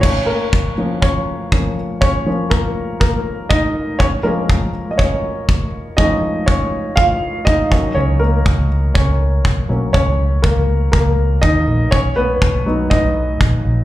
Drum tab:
CC |x-------|--------|--------|--------|
BD |o-o-o-o-|o-o-o-o-|o-o-o-o-|o-o-o-oo|

CC |--------|--------|--------|
BD |--o-o-o-|o-o-o-o-|o-o-o-o-|